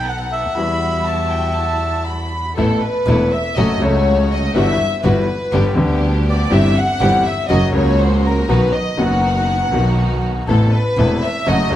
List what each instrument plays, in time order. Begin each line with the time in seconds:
Already playing: grand piano B1 B2 D#3 F#3 A3 B3, double bass B1, string section B3 D#4 A4
0.07 violin section F#5, bandoneon F#5
0.32 bandoneon E5
0.55 double bass E2, grand piano E2 E3 G3 B3 F#4, string section G3 E4 F#4, violin section B5
1.06 violin section A5
1.31 violin section G5
1.56 violin section A5
2.07 violin section B5
2.56 double bass A1, grand piano A1 A2 E3 A3 B3 A4, string section A3 B3 E4, violin section A4
2.82 violin section B4
3.06 double bass E1, grand piano E1 E2 E3 A3 B3 A4, string section A3 B3 E4
3.32 violin section E5
3.57 double bass F#1, grand piano F#2 F#3 A3 C#4 A4, string section A3 C#4 F#4, violin section D#5
3.79 double bass C#2, grand piano C#2 C#3 F#3 A3 C#4, string section A3 C#4 F#4, violin section C#5
3.84 grand piano A4
4.33 violin section D#5
4.54 grand piano G1 G2 E3 G3 B3 F#4, double bass G1, string section G3 E4 F#4, violin section E5
5.03 double bass G1, grand piano G1 G2 E3 G3 B3 F#4, string section G3 E4 F#4, violin section B4
5.52 double bass G1, grand piano G1 G2 D3 G3 B3 G4, string section B3 D4 G4
5.77 double bass D2, grand piano D2 D3 G3 B3 G4, string section B3 D4 G4
6.29 violin section D5
6.50 double bass G1, grand piano G1 G2 E3 G3 C4 G4, string section C4 E4 G4, violin section E5
6.77 violin section F#5
7.00 double bass G1, grand piano G1 G2 E3 G3 C4 G4, string section C4 E4 G4
7.26 violin section E5
7.49 double bass F#1, grand piano F#2 C#3 F#3 A#3 F#4, string section A#3 C#4 F#4, violin section D#5
7.73 double bass C#2, grand piano C#2 C#3 F#3 A#3 F#4, string section A#3 C#4 F#4, violin section C#5
8.00 violin section C5
8.26 violin section A#4
8.48 grand piano B1 B2 D#3 F#3 B3 F#4, double bass B1, string section B3 D#4 F#4, violin section B4
8.75 violin section D#5
8.97 double bass F#1, grand piano F#1 F#2 D#3 F#3 B3 F#4, string section B3 D#4 F#4, violin section F#5
9.72 double bass B1, grand piano B1 B2 D#3 F#3 B3, string section B3 D#4 F#4
9.76 grand piano F#4
10.47 double bass A1, grand piano A1 A2 C3 A3 B3 E4, string section B3 C4 A4, violin section A4
10.73 violin section B4
10.97 double bass E1, grand piano E1 E2 C3 A3 B3 E4, string section B3 C4 A4
11.23 violin section E5
11.47 double bass F#1, grand piano F#2 C#3 F#3 A3 F#4, string section A3 C#4 F#4, violin section D#5
11.70 grand piano C#2 C#3 F#3 A3, double bass C#2, string section A3 C#4 F#4, violin section C#5